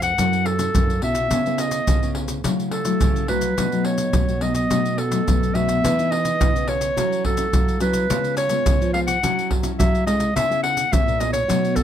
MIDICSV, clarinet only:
0, 0, Header, 1, 2, 480
1, 0, Start_track
1, 0, Tempo, 564972
1, 1118, Time_signature, 4, 2, 24, 8
1, 10052, End_track
2, 0, Start_track
2, 0, Title_t, "Clarinet"
2, 0, Program_c, 0, 71
2, 25, Note_on_c, 0, 78, 93
2, 392, Note_on_c, 0, 69, 100
2, 405, Note_off_c, 0, 78, 0
2, 876, Note_off_c, 0, 69, 0
2, 879, Note_on_c, 0, 76, 89
2, 1364, Note_on_c, 0, 75, 80
2, 1377, Note_off_c, 0, 76, 0
2, 1842, Note_off_c, 0, 75, 0
2, 2315, Note_on_c, 0, 69, 77
2, 2765, Note_off_c, 0, 69, 0
2, 2797, Note_on_c, 0, 71, 83
2, 3273, Note_on_c, 0, 73, 83
2, 3286, Note_off_c, 0, 71, 0
2, 3757, Note_on_c, 0, 75, 78
2, 3770, Note_off_c, 0, 73, 0
2, 3862, Note_off_c, 0, 75, 0
2, 3867, Note_on_c, 0, 75, 86
2, 4240, Note_on_c, 0, 69, 79
2, 4253, Note_off_c, 0, 75, 0
2, 4714, Note_on_c, 0, 76, 99
2, 4727, Note_off_c, 0, 69, 0
2, 5191, Note_on_c, 0, 75, 98
2, 5204, Note_off_c, 0, 76, 0
2, 5680, Note_on_c, 0, 73, 92
2, 5693, Note_off_c, 0, 75, 0
2, 6161, Note_off_c, 0, 73, 0
2, 6166, Note_on_c, 0, 69, 88
2, 6610, Note_off_c, 0, 69, 0
2, 6638, Note_on_c, 0, 71, 90
2, 7086, Note_off_c, 0, 71, 0
2, 7115, Note_on_c, 0, 73, 99
2, 7564, Note_off_c, 0, 73, 0
2, 7590, Note_on_c, 0, 77, 92
2, 7647, Note_off_c, 0, 77, 0
2, 7705, Note_on_c, 0, 78, 93
2, 8058, Note_off_c, 0, 78, 0
2, 8318, Note_on_c, 0, 76, 91
2, 8542, Note_off_c, 0, 76, 0
2, 8551, Note_on_c, 0, 75, 90
2, 8778, Note_off_c, 0, 75, 0
2, 8803, Note_on_c, 0, 76, 106
2, 9025, Note_off_c, 0, 76, 0
2, 9033, Note_on_c, 0, 78, 97
2, 9282, Note_on_c, 0, 76, 96
2, 9295, Note_off_c, 0, 78, 0
2, 9513, Note_on_c, 0, 75, 90
2, 9526, Note_off_c, 0, 76, 0
2, 9620, Note_off_c, 0, 75, 0
2, 9625, Note_on_c, 0, 73, 91
2, 9992, Note_on_c, 0, 69, 97
2, 10004, Note_off_c, 0, 73, 0
2, 10052, Note_off_c, 0, 69, 0
2, 10052, End_track
0, 0, End_of_file